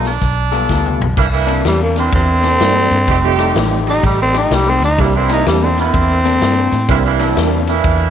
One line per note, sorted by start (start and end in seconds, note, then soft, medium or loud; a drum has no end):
0.00 0.18 B1 medium
0.00 0.10 F4 medium
0.00 0.10 A4 medium
0.05 1.06 D4 medium
0.05 snare soft
0.05 closed hi-hat medium
0.22 0.66 B1 medium
0.22 kick medium
0.22 snare soft
0.22 closed hi-hat medium
0.52 0.68 G3 medium
0.52 0.68 B3 medium
0.52 0.69 F4 medium
0.52 0.69 A4 medium
0.52 snare soft
0.52 closed hi-hat medium
0.69 0.98 D2 medium
0.69 1.05 G3 medium
0.69 1.05 B3 medium
0.69 1.06 F4 medium
0.69 1.06 A4 medium
0.69 kick medium
0.69 snare medium
0.85 mid tom medium
1.00 1.16 B1 medium
1.00 floor tom medium
1.17 1.61 C2 medium
1.17 1.27 E3 medium
1.17 1.26 A#3 medium
1.17 1.26 D4 medium
1.17 1.27 E4 medium
1.17 kick loud
1.17 crash medium
1.32 1.65 E3 medium
1.32 1.64 A#3 medium
1.32 1.65 D4 medium
1.32 1.65 E4 loud
1.47 1.64 C3 medium
1.47 1.64 E3 medium
1.47 1.64 A#3 medium
1.47 1.64 D4 medium
1.47 snare soft
1.47 ride medium
1.65 2.09 E2 medium
1.65 2.01 C3 medium
1.65 2.01 E3 medium
1.65 1.82 G3 medium
1.65 2.01 A#3 medium
1.65 2.01 D4 medium
1.65 snare medium
1.65 ride medium
1.83 1.97 A#3 medium
1.96 2.51 E3 medium
1.96 2.50 A#3 medium
1.96 2.13 C4 medium
1.96 2.51 D4 medium
1.96 2.51 E4 medium
1.96 snare soft
1.96 ride medium
2.13 2.57 E2 medium
2.13 3.53 C4 loud
2.13 kick loud
2.13 ride medium
2.43 2.59 C3 medium
2.43 2.60 E3 medium
2.43 2.60 A#3 medium
2.43 2.60 D4 medium
2.43 snare soft
2.43 ride medium
2.60 2.89 G2 medium
2.60 2.96 C3 medium
2.60 2.96 E3 medium
2.60 2.88 G3 medium
2.60 2.88 A#3 medium
2.60 2.97 A#3 medium
2.60 2.88 C4 medium
2.60 2.88 D4 medium
2.60 2.97 D4 medium
2.60 2.88 E4 medium
2.60 snare loud
2.60 ride medium
2.91 3.07 G2 medium
2.91 snare soft
2.91 ride medium
3.07 3.52 F1 medium
3.07 3.80 G3 medium
3.07 3.17 G3 medium
3.07 3.80 A3 medium
3.07 3.17 A3 medium
3.07 3.80 C4 medium
3.07 3.80 D#4 medium
3.07 3.17 D#4 medium
3.07 3.80 F4 medium
3.07 3.17 G4 medium
3.07 kick loud
3.07 ride medium
3.23 3.56 G3 medium
3.23 3.55 A3 medium
3.23 3.55 D#4 medium
3.23 3.56 G4 loud
3.39 3.55 F3 medium
3.39 3.55 A3 medium
3.39 3.56 D#4 medium
3.39 3.56 G4 medium
3.39 snare soft
3.39 ride medium
3.55 4.00 A1 medium
3.55 3.92 F3 medium
3.55 3.92 A3 medium
3.55 3.92 D#4 medium
3.55 3.92 G4 medium
3.55 snare loud
3.55 ride medium
3.86 4.41 G3 medium
3.86 4.41 A3 medium
3.86 4.41 D#4 medium
3.86 4.04 D#4 medium
3.86 4.41 G4 medium
3.86 snare soft
3.86 ride medium
4.03 4.47 A1 medium
4.03 4.20 G3 medium
4.03 kick loud
4.03 ride medium
4.22 4.36 C4 medium
4.34 4.50 F3 medium
4.34 4.50 A3 medium
4.34 4.50 D#4 medium
4.34 4.56 D#4 medium
4.34 4.51 G4 medium
4.34 snare soft
4.34 ride medium
4.51 4.79 C2 medium
4.51 4.87 F3 medium
4.51 4.87 A3 medium
4.51 4.87 D#4 medium
4.51 4.87 G4 medium
4.51 snare loud
4.51 ride medium
4.55 4.71 G3 medium
4.69 4.84 C4 medium
4.81 4.97 D2 medium
4.81 5.02 D#4 medium
4.81 snare soft
4.81 ride medium
4.97 5.43 C2 loud
4.97 5.08 E3 medium
4.97 5.70 G3 medium
4.97 5.15 G3 medium
4.97 5.70 A#3 medium
4.97 5.08 A#3 medium
4.97 5.71 C4 soft
4.97 5.71 D4 medium
4.97 5.08 D4 medium
4.97 5.71 E4 medium
4.97 5.08 E4 medium
4.97 kick loud
4.97 snare soft
4.97 ride medium
5.14 5.47 E3 medium
5.14 5.47 A#3 medium
5.14 5.31 C4 medium
5.14 5.47 D4 medium
5.14 5.47 E4 medium
5.29 5.45 C3 medium
5.29 5.45 E3 medium
5.29 5.46 A#3 medium
5.29 5.46 D4 medium
5.29 5.47 D#4 medium
5.29 snare soft
5.29 ride medium
5.46 5.91 E2 medium
5.46 5.82 C3 medium
5.46 5.82 E3 medium
5.46 5.66 G3 medium
5.46 5.82 A#3 medium
5.46 5.83 D4 medium
5.46 snare loud
5.46 ride medium
5.64 5.79 C4 medium
5.77 6.32 E3 medium
5.77 6.31 A#3 medium
5.77 7.18 C4 loud
5.77 6.32 D4 medium
5.77 6.32 E4 medium
5.77 snare soft
5.77 ride medium
5.94 6.38 E2 medium
5.94 kick loud
5.94 ride medium
6.25 6.41 C3 medium
6.25 6.41 E3 medium
6.25 6.42 A#3 medium
6.25 6.42 D4 medium
6.25 snare soft
6.25 ride medium
6.42 6.70 G2 medium
6.42 6.78 C3 medium
6.42 6.78 E3 medium
6.42 6.78 A#3 medium
6.42 6.78 D4 medium
6.42 snare loud
6.42 ride medium
6.72 6.88 A2 medium
6.72 snare soft
6.72 ride medium
6.88 7.33 C2 medium
6.88 6.99 E3 medium
6.88 7.61 G3 medium
6.88 7.61 A#3 medium
6.88 6.98 A#3 medium
6.88 7.62 C4 medium
6.88 7.61 D4 medium
6.88 6.99 D4 medium
6.88 6.99 E4 loud
6.88 7.62 E4 medium
6.88 kick loud
6.88 snare soft
6.88 ride medium
7.04 7.37 E3 medium
7.04 7.37 A#3 medium
7.04 7.37 D4 medium
7.04 7.37 E4 loud
7.19 7.36 C3 medium
7.19 7.36 E3 medium
7.19 7.37 A#3 medium
7.19 7.37 D4 loud
7.19 snare soft
7.19 ride medium
7.37 7.81 E2 medium
7.37 7.73 C3 medium
7.37 7.73 E3 medium
7.37 7.73 A#3 medium
7.37 7.74 D4 medium
7.37 snare loud
7.37 ride medium
7.67 8.10 E3 medium
7.67 8.10 A#3 medium
7.67 8.10 D4 medium
7.67 8.10 E4 loud
7.67 snare soft
7.67 ride medium
7.84 8.10 E2 medium
7.84 kick loud
7.84 ride medium